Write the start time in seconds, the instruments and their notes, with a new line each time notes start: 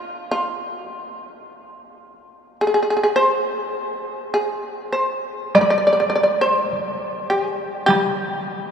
Already playing: shamisen F4
0.31 shamisen F4
0.71 shamisen F#4
0.97 shamisen G4
2.61 shamisen G#4
2.67 shamisen G#4
2.74 shamisen G#4
2.83 shamisen G#4
2.90 shamisen G#4
2.97 shamisen G#4
3.03 shamisen G#4
3.16 shamisen C5
4.34 shamisen G#4
4.67 shamisen G4
4.92 shamisen C5
5.55 shamisen D5, taiko rim, taiko high
5.61 shamisen D5
5.70 shamisen D5
5.78 shamisen D5
5.87 shamisen D5
5.93 shamisen D5
6.00 shamisen D5
6.10 shamisen D5
6.16 shamisen D5
6.23 shamisen D5
6.41 shamisen C5
6.73 taiko high
7.30 shamisen G4
7.43 shamisen G#4
7.86 shamisen G4, taiko rim, taiko high